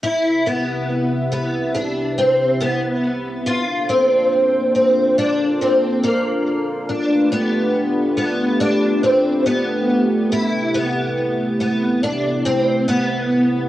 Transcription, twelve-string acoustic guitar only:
X:1
M:4/4
L:1/8
Q:1/4=70
K:C
V:1 name="Twelve-string acoustic guitar"
E B,2 B, D C B,2 | F C2 C D C _B,2 | D B,2 B, D C B,2 | E B,2 B, D C B,2 |]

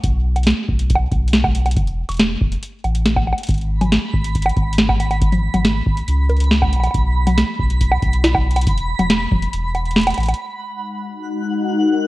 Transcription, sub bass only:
X:1
M:4/4
L:1/16
Q:1/4=139
K:G#m
V:1 name="Sub bass" clef=bass
B,,,4- B,,, z B,,,4 B,,,6 | E,,,3 E,,,3 E,,, z3 =A,,,4- A,,, z | G,,,4- G,,, z G,,,4 G,,,6- | G,,,3 G,,,3 G,,, z C,,6 A,,, z |
B,,,4- B,,, z B,,,4 B,,,6 | E,,,3 E,,,3 E,,, z E,,,6 =A,,, z | z16 |]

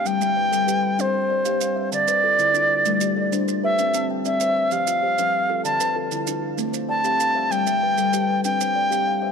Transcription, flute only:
X:1
M:12/8
L:1/8
Q:3/8=129
K:Gmix
V:1 name="Flute"
g6 c6 | d8- d z2 e- | e2 z e3 f6 | a2 z6 a4 |
g6 g6 |]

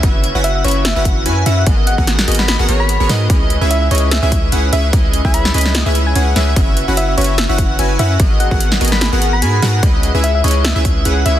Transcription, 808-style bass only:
X:1
M:4/4
L:1/16
Q:"Swing 16ths" 1/4=147
K:C#dor
V:1 name="808-style bass" clef=bass
F,,,3 F,,,3 F,,,3 F,,,3 F,,2 F,,2 | G,,,3 G,,,3 G,,,3 G,,, G,,,3 G,,, G,,2 | C,,3 C,,3 C,,3 C,,3 C,,2 C,,2 | C,,3 C,,3 C,,3 C,,3 C,,2 C,,2 |
F,,,3 F,,,3 F,,,3 F,,,3 F,,,2 F,,2 | G,,,3 G,,,3 G,,,3 G,,,3 G,,2 G,,2 | C,,3 C,,3 C,,3 C,,3 C,,2 C,,2 |]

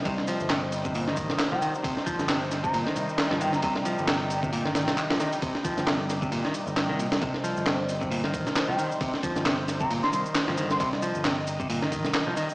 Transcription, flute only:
X:1
M:4/4
L:1/16
Q:"Swing 16ths" 1/4=134
K:Cm
V:1 name="Flute"
z12 z g z2 | z6 z b z6 g b | b z12 z3 | z16 |
z12 z g z2 | z6 z b z c' c' z4 c' | c' z12 z3 |]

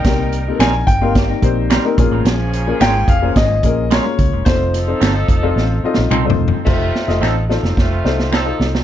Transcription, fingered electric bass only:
X:1
M:4/4
L:1/16
Q:1/4=109
K:Fm
V:1 name="Fingered electric bass" clef=bass
C,,4 B,,,2 G,,,4 B,,,3 z B,,, =A,,, | B,,,4 A,,,2 F,,,2 A,,,2 B,,,3 z D,, =E,,, | F,,,4 G,,,2 F,,,2 =A,,,2 z B,,, C,,2 =E,,, z | F,,,2 z F,,, =A,,,3 F,,, F,,,2 C,,4 C,,2 |]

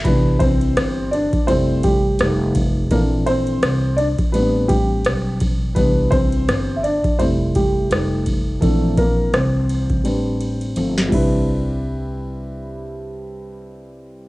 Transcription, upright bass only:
X:1
M:4/4
L:1/16
Q:"Swing 16ths" 1/4=84
K:C
V:1 name="Upright bass" clef=bass
C,,4 G,,,3 z F,,,4 F,,,4 | _B,,,4 C,,3 z A,,,4 =B,,,4 | C,,4 G,,,3 z F,,,4 F,,,4 | _B,,,4 C,,4 A,,,4 G,,,2 C,,2- |
C,,16 |]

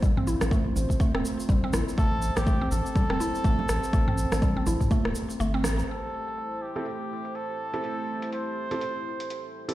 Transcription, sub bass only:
X:1
M:4/4
L:1/16
Q:"Swing 16ths" 1/4=123
K:Am
V:1 name="Sub bass" clef=bass
A,,,3 A,,,3 A,,, z2 E,,, z2 A,,, z A,,, z | A,,,3 A,,,3 A,,, z2 E,,, z2 A,,, z A,,, z | A,,,3 A,,,3 A,,, z2 E,,, z2 G,,,2 A,,, z | z16 |
z16 |]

